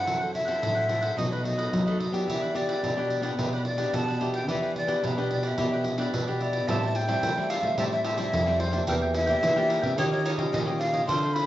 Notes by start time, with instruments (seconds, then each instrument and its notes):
Already playing: nylon-string guitar C4 E4 A4, flute F#5
0.06 nylon-string guitar F#2 F#3, cavaquinho E4 A4 C5 F#5, pandeiro
0.20 cavaquinho A4 C5 F#5, pandeiro
0.32 flute E5, muted cavaquinho stroke, pandeiro
0.45 nylon-string guitar C4 E4 A4, cavaquinho A4 C5 F#5, pandeiro
0.61 nylon-string guitar A2 F#3, cavaquinho E4 A4 C5 F#5, pandeiro
0.75 cavaquinho A4 C5 F#5, pandeiro
0.88 nylon-string guitar C4 E4 A4, pandeiro
1.01 cavaquinho A4 C5 F#5, pandeiro
1.16 nylon-string guitar B2 F#3 A3 D#4, cavaquinho D#4 A4 B4 D#5, flute D#5, pandeiro
1.31 cavaquinho A4 B4 D#5, flute B4, pandeiro
1.43 nylon-string guitar F#3 A3 D#4, flute D#5, muted cavaquinho stroke, pandeiro
1.56 cavaquinho A4 B4 D#5, pandeiro
1.71 nylon-string guitar F#2 F#3, pandeiro
1.86 nylon-string guitar F#3 A3 D#4, cavaquinho A4 B4 D#5, pandeiro
1.98 cavaquinho D#4 A4 B4 D#5, pandeiro
2.12 nylon-string guitar B3 D4 G4, pandeiro
2.27 nylon-string guitar E3, cavaquinho E4 G4 B4 D5, flute E5, pandeiro
2.41 cavaquinho G4 B4 D5, pandeiro
2.54 nylon-string guitar B3 D4 G4, flute D5, muted cavaquinho stroke, pandeiro
2.67 cavaquinho G4 B4 D5, pandeiro
2.83 nylon-string guitar B2, cavaquinho E4 G4 B4 D5, pandeiro
2.97 nylon-string guitar B3 D4 G4, cavaquinho G4 B4 D5, pandeiro
3.10 pandeiro
3.21 nylon-string guitar B3 D4 G4, cavaquinho G4 B4 D5, pandeiro
3.37 nylon-string guitar B2 E3 B3 D4 G4, cavaquinho E4 G4 B4 D5, flute B4, pandeiro
3.52 cavaquinho G4 B4 D5, flute B4, pandeiro
3.65 flute D5, muted cavaquinho stroke, pandeiro
3.77 nylon-string guitar B3 D4 G4, cavaquinho G4 B4 D5, pandeiro
3.93 nylon-string guitar B2, flute A5, pandeiro
4.07 cavaquinho G4 B4 D5, pandeiro
4.19 nylon-string guitar B3 D4 G4, cavaquinho E4 G4 B4 D5, pandeiro
4.34 flute G5, pandeiro
4.47 nylon-string guitar E3 B3 D4 G4, cavaquinho E4 G4 B4 D5, flute E5, pandeiro
4.62 cavaquinho G4 B4 D5, pandeiro
4.75 flute D5, muted cavaquinho stroke, pandeiro
4.87 nylon-string guitar B3 D4 G4, cavaquinho G4 B4 D5, pandeiro
5.02 nylon-string guitar B2, cavaquinho E4 G4 B4 D5, flute B4, pandeiro
5.17 nylon-string guitar B3 D4 G4, cavaquinho G4 B4 D5, pandeiro
5.30 flute D5, pandeiro
5.43 cavaquinho G4 B4 D5, flute E5, pandeiro
5.58 nylon-string guitar B2 E3 B3 D4 G4, cavaquinho E4 G4 B4 D5, pandeiro
5.72 cavaquinho G4 B4 D5, pandeiro
5.84 muted cavaquinho stroke, pandeiro
5.98 nylon-string guitar B3 D4 G4, cavaquinho G4 B4 D5, pandeiro
6.13 nylon-string guitar B2, pandeiro
6.27 nylon-string guitar B3 D4 G4, cavaquinho G4 B4 D5, pandeiro
6.40 cavaquinho E4 G4 B4 D5, flute D5, pandeiro
6.53 pandeiro
6.68 nylon-string guitar A2 G3 C4 E4, cavaquinho G4 C5 E5 A5, flute A5, pandeiro
6.83 cavaquinho C5 E5 A5, pandeiro
6.95 flute G5, muted cavaquinho stroke, pandeiro
7.08 nylon-string guitar G3 C4 E4, cavaquinho C5 E5 A5, pandeiro
7.23 nylon-string guitar E3 A3, pandeiro
7.37 nylon-string guitar G3 C4 E4, cavaquinho C5 E5 A5, pandeiro
7.50 cavaquinho G4 C5 E5 A5, flute F5, pandeiro
7.62 nylon-string guitar A3, cavaquinho C5 E5 A5, pandeiro
7.77 nylon-string guitar A2 G3 A3 C4 E4, cavaquinho G4 C5 E5 A5, flute E5, pandeiro
7.92 cavaquinho C5 E5 A5, flute E5, pandeiro
8.04 cavaquinho G4 C5 E5 A5, flute E5, pandeiro
8.17 nylon-string guitar G3 C4 E4, cavaquinho C5 E5 A5, pandeiro
8.32 nylon-string guitar F2 E3, pandeiro
8.46 nylon-string guitar G3 C4 E4, cavaquinho C5 E5 A5, pandeiro
8.59 flute C5, muted cavaquinho stroke, pandeiro
8.71 nylon-string guitar A#3 D4 G4, cavaquinho C5 E5 A5, pandeiro
8.87 nylon-string guitar E2 E3, cavaquinho D4 A#4 E5 G5, flute G5, pandeiro
9.02 cavaquinho A#4 E5 G5, pandeiro
9.14 flute E5, muted cavaquinho stroke, pandeiro
9.26 nylon-string guitar A#3 D4 G4, cavaquinho A#4 E5 G5, pandeiro
9.42 nylon-string guitar E3, pandeiro
9.56 nylon-string guitar A#3 D4 G4, cavaquinho A#4 E5 G5, pandeiro
9.69 cavaquinho D4 A#4 E5 G5, pandeiro
9.81 nylon-string guitar C3, cavaquinho A#4 E5 G5, pandeiro
9.97 nylon-string guitar D#3 C#4 F4 G4, cavaquinho D#4 G4 C#5 D#5, flute C#5, pandeiro
10.11 cavaquinho G4 C#5 D#5, flute C#5, pandeiro
10.25 cavaquinho D#4 G4 C#5 D#5, flute C#5, pandeiro
10.37 nylon-string guitar C#4 F4 G4, cavaquinho G4 C#5 D#5, pandeiro
10.52 nylon-string guitar A#2 D#3, flute D#5, pandeiro
10.66 nylon-string guitar C#4 F4 G4, cavaquinho G4 C#5 D#5, pandeiro
10.79 flute F5, muted cavaquinho stroke, pandeiro
10.93 cavaquinho G4 C#5 D#5, pandeiro
11.07 nylon-string guitar D3 C4 F4 A4, cavaquinho D4 A4 C5 F5, flute C6, pandeiro
11.23 cavaquinho A4 C5 F5, pandeiro
11.33 flute B5, muted cavaquinho stroke, pandeiro